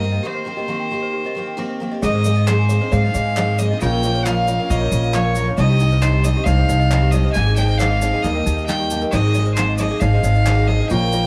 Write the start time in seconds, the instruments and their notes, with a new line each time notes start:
Already playing: upright bass G2, celesta A#4 C5 A#5, fiddle D#5
0.02 twelve-string acoustic guitar D#3 A#3 C4 G4
0.12 twelve-string acoustic guitar A#3 C4 G4, celesta D#5
0.23 twelve-string acoustic guitar D#3 A#3 C4 G4, celesta G4, fiddle C5
0.34 celesta C5
0.45 twelve-string acoustic guitar D#3 A#3 C4 G4, celesta G4
0.57 twelve-string acoustic guitar A#3 C4 G4, celesta D#5
0.68 twelve-string acoustic guitar D#3 A#3 C4 G4, celesta G4
0.80 celesta G5
0.91 twelve-string acoustic guitar D#3 A#3 C4 G4, celesta G4
1.02 celesta C5
1.13 celesta G4
1.24 twelve-string acoustic guitar A#3 C4 G4, celesta D#5
1.35 twelve-string acoustic guitar D#3 A#3 C4 G4, celesta G4
1.48 celesta G5
1.57 twelve-string acoustic guitar D#3 A#3 C4 G4, celesta G4
1.70 celesta C5
1.80 twelve-string acoustic guitar D#3 A#3 C4 G4
1.91 twelve-string acoustic guitar A#3 C4 G4, celesta D#5
2.02 upright piano G#1 G#2 G#3 C4 D#4 C5 D#5, twelve-string acoustic guitar G#2 D#3 G#3 C4 D#4 G#4, upright bass G#2, celesta G#4, fiddle D#5, shaker
2.14 celesta C5
2.24 upright piano G#3 C4 D#4 C5 F5, twelve-string acoustic guitar G#3 C4, celesta G#4, shaker
2.28 twelve-string acoustic guitar D#4 G#4
2.35 celesta D#5, shaker
2.47 twelve-string acoustic guitar G#2 D#3 G#3 C4 D#4, upright piano G#3 C4 D#4 C5 D#5, celesta G#4, fiddle C5, clap, shaker
2.51 twelve-string acoustic guitar G#4
2.59 celesta G#5
2.69 upright piano G#3 C4 D#4 C5 F5, twelve-string acoustic guitar G#3 C4 D#4, celesta G#4, shaker
2.73 twelve-string acoustic guitar G#4
2.81 twelve-string acoustic guitar G#3 C4 D#4 G#4, celesta C5
2.92 upright bass G#2, upright piano G#3 C4 D#4 C5 F5, twelve-string acoustic guitar G#3 C4 D#4, celesta G#4, fiddle F5, shaker
2.96 twelve-string acoustic guitar G#4
3.04 twelve-string acoustic guitar G#3 C4 D#4 G#4, celesta D#5
3.14 upright bass G#2, upright piano G#3 C4 D#4 C5 D#5, celesta G#4, shaker
3.26 celesta G#5
3.36 twelve-string acoustic guitar G#2 D#3 G#3 C4 D#4 G#4, upright piano G#3 C4 D#4 C5 D#5, celesta G#4, clap, shaker
3.48 celesta C5
3.58 upright piano G#3 C4 D#4 C5 D#5, twelve-string acoustic guitar G#3 C4 D#4, celesta G#4, fiddle D#5, shaker
3.63 twelve-string acoustic guitar G#4
3.70 twelve-string acoustic guitar G#3 C4 D#4 G#4, celesta D#5
3.81 upright piano A#1 A#2 F3 A#3 C#4 A#4 C#5, upright bass A#1, twelve-string acoustic guitar A#2 F3 C#4 F4 A#4, celesta F4, fiddle G5, shaker
3.93 celesta A#4
4.03 upright piano F3 A#3 C#4 A#4 C5, twelve-string acoustic guitar F3 C#4 F4 A#4, celesta F4, shaker
4.14 celesta C#5, shaker
4.26 twelve-string acoustic guitar A#2 F3 C#4 F4 A#4, upright piano F3 A#3 C#4 A#4 D#5, celesta F4, fiddle F5, clap, shaker
4.37 celesta F5
4.47 upright piano F3 A#3 C#4 A#4 C5, twelve-string acoustic guitar F3 C#4 F4 A#4, celesta F4, shaker
4.59 twelve-string acoustic guitar C#4 F4 A#4, celesta A#4
4.70 upright bass A#1, upright piano F3 A#3 C#4 A#4 C#5, twelve-string acoustic guitar F3 C#4 F4 A#4, celesta F4, fiddle D#5, shaker
4.80 twelve-string acoustic guitar C#4 F4 A#4, celesta C#5
4.92 upright bass A#1, upright piano F3 A#3 C#4 A#4 C#5, celesta F4, shaker
5.03 celesta F5, shaker
5.13 twelve-string acoustic guitar A#2 F3 C#4 F4 A#4, upright piano F3 A#3 C#4 A#4 C#5, celesta F4, fiddle C#5, clap, shaker
5.25 celesta A#4
5.35 upright piano F3 A#3 C#4 A#4 C#5, twelve-string acoustic guitar F3 C#4 F4 A#4, celesta F4, shaker
5.47 twelve-string acoustic guitar C#4 F4 A#4, celesta C#5
5.57 upright piano C2 C3 G3 C4 D#4 C5 D#5, upright bass C2, twelve-string acoustic guitar C3 G3 C4 D#4 G4, celesta D#4, fiddle D#5, shaker
5.70 celesta G4
5.79 twelve-string acoustic guitar G3 C4 D#4 G4, upright piano G3 C4 D#4 C5 D#5, celesta D#4, shaker
5.92 celesta C5, shaker
6.01 twelve-string acoustic guitar C3 G3 C4 D#4 G4, upright piano G3 C4 D#4 C5 D#5, celesta D#4, fiddle C5, clap, shaker
6.14 celesta D#5
6.24 upright piano G3 C4 D#4 C5 D#5, twelve-string acoustic guitar G3 C4 D#4 G4, celesta D#4, fiddle D#5, shaker
6.36 twelve-string acoustic guitar C4 D#4 G4, celesta G4
6.44 upright bass C2, upright piano G3 C4 D#4 C5 F5, twelve-string acoustic guitar G3, celesta D#4, fiddle F5, shaker
6.48 twelve-string acoustic guitar C4 D#4 G4
6.58 twelve-string acoustic guitar C4 D#4 G4, celesta C5
6.69 upright bass C2, upright piano G3 C4 D#4 C5 D#5, celesta D#4, shaker
6.79 celesta D#5, shaker
6.90 twelve-string acoustic guitar C3 G3 C4 D#4 G4, upright piano G3 C4 D#4 C5 D#5, celesta D#4, clap, shaker
7.03 celesta G4
7.11 twelve-string acoustic guitar G3 C4, upright piano G3 C4 D#4 C5 D#5, celesta D#4, fiddle D#5, shaker
7.16 twelve-string acoustic guitar D#4 G4
7.25 twelve-string acoustic guitar C4 D#4 G4, celesta C5
7.32 upright piano G#1 G#2 G#3 C4 D#4 C5 D#5, upright bass G#1, twelve-string acoustic guitar G#2 D#3, celesta D#4, fiddle G#5, shaker
7.37 twelve-string acoustic guitar G#3 C4 D#4 G#4
7.46 celesta G#4
7.56 twelve-string acoustic guitar G#3 C4 D#4 G#4, upright piano G#3 C4 D#4 C5 D#5, celesta D#4, fiddle G5, shaker
7.68 celesta C5, shaker
7.78 twelve-string acoustic guitar G#2 D#3 G#3, upright piano G#3 C4 D#4 C5 D#5, celesta D#4, fiddle F5, clap, shaker
7.82 twelve-string acoustic guitar C4 D#4 G#4
7.91 celesta D#5
8.02 twelve-string acoustic guitar G#3 C4 D#4 G#4, upright piano G#3 C4 D#4 C5 D#5, celesta D#4, shaker
8.13 twelve-string acoustic guitar G#3 C4 D#4 G#4, celesta G#4
8.22 upright piano D#2 D#3 G3 A#3 D#4 A#4 D#5, upright bass D#2, twelve-string acoustic guitar G3 A#3 D#4 G4, celesta D#4, fiddle D#5, shaker
8.35 twelve-string acoustic guitar A#3 D#4 G4, celesta A#4
8.46 upright bass D#2, upright piano G3 A#3 D#4 A#4 F5, celesta D#4, shaker
8.57 celesta D#5, shaker
8.66 twelve-string acoustic guitar D#3 G3 A#3 D#4 G4, upright piano G3 A#3 D#4 A#4 D#5, celesta D#4, fiddle G5, clap, shaker
8.80 celesta G4
8.90 twelve-string acoustic guitar G3 A#3 D#4 G4, upright piano G3 A#3 D#4 A#4 D#5, celesta D#4, shaker
9.01 twelve-string acoustic guitar A#3 D#4 G4, celesta A#4, shaker
9.11 upright bass G#1, upright piano G#1 G#2 G#3 C4 D#4 C5 D#5, twelve-string acoustic guitar G#2 D#3, celesta D#4, fiddle D#5, shaker
9.15 twelve-string acoustic guitar G#3 C4 D#4 G#4
9.24 celesta G#4
9.34 upright piano G#3 C4 D#4 C5 D#5, twelve-string acoustic guitar G#3 C4 D#4, celesta D#4, shaker
9.39 twelve-string acoustic guitar G#4
9.45 celesta C5, shaker
9.54 twelve-string acoustic guitar G#2 D#3, upright piano G#3 C4 D#4 C5 F5, celesta D#4, fiddle C5, clap, shaker
9.59 twelve-string acoustic guitar G#3 C4 D#4 G#4
9.69 celesta D#5
9.77 upright piano G#3 C4 D#4 C5 D#5, twelve-string acoustic guitar G#3, celesta D#4, fiddle D#5, shaker
9.81 twelve-string acoustic guitar C4 D#4 G#4
9.90 twelve-string acoustic guitar G#3 C4 D#4 G#4, celesta G#4
10.00 upright bass G#1, upright piano G#3 C4 D#4 C5 D#5, twelve-string acoustic guitar G#3 C4 D#4, celesta D#4, fiddle F5, shaker
10.04 twelve-string acoustic guitar G#4
10.13 twelve-string acoustic guitar G#3 C4 D#4 G#4, celesta C5
10.23 upright bass G#1, upright piano G#3 C4 D#4 C5 D#5, celesta D#4, shaker
10.35 celesta D#5, shaker
10.46 twelve-string acoustic guitar G#2 D#3 G#3 C4 D#4 G#4, upright piano G#3 C4 D#4 C5 D#5, celesta D#4, clap, shaker
10.57 celesta G#4
10.68 twelve-string acoustic guitar G#3 C4 D#4 G#4, upright piano G#3 C4 D#4 C5 F5, celesta D#4, fiddle D#5
10.79 twelve-string acoustic guitar G#3 C4 D#4 G#4, celesta C5
10.89 upright bass A#1, upright piano A#1 A#2 F3 A#3 C#4 A#4 C#5, twelve-string acoustic guitar A#2 F3 C#4 F4 A#4, celesta F4, fiddle G5, shaker
11.02 celesta A#4
11.12 twelve-string acoustic guitar F3 C#4 F4 A#4, upright piano F3 A#3 C#4 A#4 C5, celesta F4, shaker